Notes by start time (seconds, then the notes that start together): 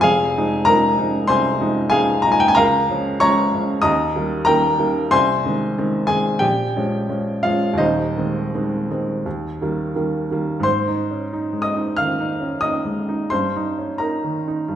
0.00 F1 F2 G#4 F5 G#5
0.37 F3 G#3 D#4
0.65 F3 G#3 D#4 A#4 A#5
0.97 F3 G#3 D#4
1.27 C2 C5 G#5 C6
1.60 F3 G#3 D#4
1.90 F3 G#3 D#4 G#4 F5 G#5
2.22 F3 G#3 A#5
2.27 D#4
2.32 G#5
2.40 G5
2.48 G#5
2.55 C#2 A#4 F5 A#5
2.89 F3 G#3 C#4
3.20 F3 G#3 C#4 C#5 A#5 C#6
3.52 F3 G#3 C#4
3.82 D#2 D#5 A#5 D#6
4.15 D#3 G3 A#3
4.45 D#3 A#3 A#4 G5 A#5
4.49 G3
4.79 D#3 G3 A#3
5.11 C2 C5 G#5 C6
5.45 D#3 G#3 C4
5.78 D#3 G#3 C4
6.07 D#3 G#3 C4 G#4 G#5
6.39 A#1 G4 G5
6.76 F3 G#3 C#4
7.09 F3 G#3 C#4
7.43 F3 G#3 C#4 F4 F5
7.73 D#2
7.78 D#1 D#4 C5 D#5
8.17 D#3 G#3 C4
8.55 D#3 G#3 C4
8.90 D#3 G#3 C4
9.26 D#2
9.61 D#3 G3 A#3
9.95 D#3 G3 A#3
10.31 D#3 G3 A#3
10.60 G#2 C5 C6
10.88 D#4
11.11 C#4
11.33 D#4
11.53 G#3
11.62 D#5 D#6
11.77 D#4
11.96 D#3 F5 F6
12.20 D#4
12.40 C#4
12.61 D#4 D#5 D#6
12.85 G#3
13.09 D#4
13.30 G2 C5 C6
13.56 D#4
13.79 C#4
13.98 D#4 A#4 A#5
14.24 D#3
14.48 D#4
14.68 G2